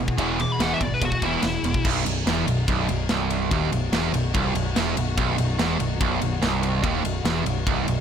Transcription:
Already playing: distorted electric guitar E2 B2, string section E3 B3 F#4 G#4
0.08 kick
0.17 picked electric bass E1, distorted electric guitar E2 B2 E3, kick, ride
0.39 distorted electric guitar E2 B2, lead electric guitar D6, ride
0.52 lead electric guitar B5
0.59 picked electric bass E1, distorted electric guitar E2 B2 E3, lead electric guitar F#5, snare, ride
0.73 lead electric guitar E5
0.81 picked electric bass G#1, distorted electric guitar E2 B2, lead electric guitar D5, kick, ride
0.94 lead electric guitar B4
1.01 picked electric bass E1, distorted electric guitar E2 B2, lead electric guitar F#4, kick, ride
1.12 kick
1.22 picked electric bass E1, distorted electric guitar E2 B2 E3, lead electric guitar E4, kick, ride
1.42 picked electric bass E1, distorted electric guitar E2 B2, snare, ride
1.63 picked electric bass E1, distorted electric guitar E2 B2, ride
1.74 kick
1.84 picked electric bass B0, distorted electric guitar B1, string section B3 D#4 F#4, kick, crash
2.05 picked electric bass B0, distorted electric guitar B1, ride
2.26 picked electric bass E1, distorted electric guitar E2, snare, ride
2.46 picked electric bass B0, distorted electric guitar B1, ride
2.68 picked electric bass B0, distorted electric guitar B1, kick, ride
2.89 picked electric bass B0, distorted electric guitar B1, ride
3.09 picked electric bass C1, distorted electric guitar C2, snare, ride
3.30 ride
3.51 picked electric bass D#1, distorted electric guitar D#2, kick, ride
3.72 picked electric bass B0, distorted electric guitar B1, ride
3.92 picked electric bass E1, distorted electric guitar E2, snare, ride
4.13 picked electric bass B0, distorted electric guitar B1, ride
4.34 picked electric bass C1, distorted electric guitar C2, kick, ride
4.54 picked electric bass B0, distorted electric guitar B1, ride
4.75 picked electric bass E1, distorted electric guitar E2, snare, ride
4.96 picked electric bass B0, distorted electric guitar B1, ride
5.17 picked electric bass B0, distorted electric guitar B1, kick, ride
5.38 picked electric bass B0, distorted electric guitar B1, ride
5.59 picked electric bass E1, distorted electric guitar E2, snare, ride
5.79 picked electric bass B0, distorted electric guitar B1, ride
6.00 picked electric bass B0, distorted electric guitar B1, kick, ride
6.21 picked electric bass B0, distorted electric guitar B1, ride
6.42 picked electric bass C1, distorted electric guitar C2, snare, ride
6.63 ride
6.83 picked electric bass D#1, distorted electric guitar D#2, kick, ride
7.04 picked electric bass B0, distorted electric guitar B1, ride
7.25 picked electric bass E1, distorted electric guitar E2, snare, ride
7.45 picked electric bass B0, distorted electric guitar B1, ride
7.67 picked electric bass C1, distorted electric guitar C2, kick, ride
7.87 picked electric bass B0, distorted electric guitar B1, ride

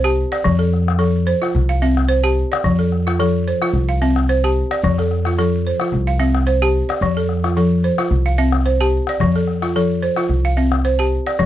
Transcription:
Already playing: upright bass C2, balafon C5
0.04 balafon G4 A5
0.32 balafon D5, calabash click
0.44 upright bass F2, balafon F3, calabash thump
0.59 balafon A4
0.74 calabash click
0.88 calabash click
0.99 balafon F3 A4
1.27 balafon C5
1.42 balafon F4, calabash click
1.55 upright bass C2, calabash thump
1.69 balafon F5
1.82 balafon C4 E5
1.97 calabash click
2.09 balafon C5
2.24 balafon G4 A5
2.52 balafon D5, calabash click
2.64 upright bass F2, balafon F3, calabash thump
2.79 balafon A4
2.92 calabash click
3.07 balafon F4, calabash click
3.20 balafon F3 A4
3.48 balafon C5
3.62 balafon F4, calabash click
3.73 upright bass C2, calabash thump
3.89 balafon F5
4.02 balafon C4 E5
4.16 calabash click
4.29 balafon C5
4.44 balafon G4 A5
4.71 balafon D5, calabash click
4.83 upright bass F2, balafon F3, calabash thump
4.98 balafon A4, calabash click
5.11 calabash click
5.25 balafon F4, calabash click
5.39 balafon F3 A4
5.67 balafon C5
5.80 balafon F4, calabash click
5.92 upright bass C2, calabash thump
6.07 balafon F5
6.20 balafon C4 E5, calabash click
6.35 calabash click
6.47 balafon C5
6.62 balafon G4 A5
6.89 balafon D5, calabash click
7.01 upright bass F2, balafon F3, calabash thump
7.17 balafon A4
7.29 calabash click
7.44 balafon F4, calabash click
7.57 balafon F3 A4
7.84 balafon C5
7.98 balafon F4, calabash click
8.11 upright bass C2, calabash thump
8.26 balafon F5
8.38 balafon C4 E5
8.52 calabash click
8.66 balafon C5
8.81 balafon G4 A5
9.07 balafon D5, calabash click
9.20 upright bass F2, balafon F3, calabash thump
9.36 balafon A4
9.48 calabash click
9.62 balafon F4, calabash click
9.76 balafon F3 A4
10.02 balafon C5
10.16 balafon F4, calabash click
10.29 upright bass C2, calabash thump
10.45 balafon F5
10.57 balafon C4 E5
10.72 calabash click
10.85 balafon C5
10.99 balafon G4 A5
11.27 balafon D5, calabash click
11.39 upright bass F2, balafon F3, calabash thump

